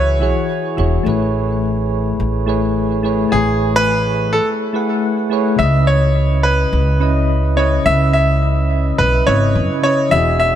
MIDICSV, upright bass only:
0, 0, Header, 1, 2, 480
1, 0, Start_track
1, 0, Tempo, 566038
1, 902, Time_signature, 4, 2, 24, 8
1, 8949, End_track
2, 0, Start_track
2, 0, Title_t, "Upright bass"
2, 0, Program_c, 0, 32
2, 0, Note_on_c, 0, 37, 94
2, 181, Note_off_c, 0, 37, 0
2, 181, Note_on_c, 0, 35, 92
2, 263, Note_off_c, 0, 35, 0
2, 662, Note_on_c, 0, 28, 89
2, 820, Note_off_c, 0, 28, 0
2, 902, Note_on_c, 0, 33, 99
2, 1797, Note_off_c, 0, 33, 0
2, 1863, Note_on_c, 0, 33, 90
2, 2757, Note_off_c, 0, 33, 0
2, 2821, Note_on_c, 0, 33, 96
2, 3716, Note_off_c, 0, 33, 0
2, 4742, Note_on_c, 0, 37, 98
2, 5637, Note_off_c, 0, 37, 0
2, 5704, Note_on_c, 0, 37, 96
2, 6598, Note_off_c, 0, 37, 0
2, 6664, Note_on_c, 0, 37, 93
2, 7558, Note_off_c, 0, 37, 0
2, 7621, Note_on_c, 0, 35, 100
2, 7780, Note_off_c, 0, 35, 0
2, 7862, Note_on_c, 0, 32, 85
2, 8102, Note_on_c, 0, 42, 94
2, 8115, Note_off_c, 0, 32, 0
2, 8184, Note_off_c, 0, 42, 0
2, 8580, Note_on_c, 0, 28, 96
2, 8949, Note_off_c, 0, 28, 0
2, 8949, End_track
0, 0, End_of_file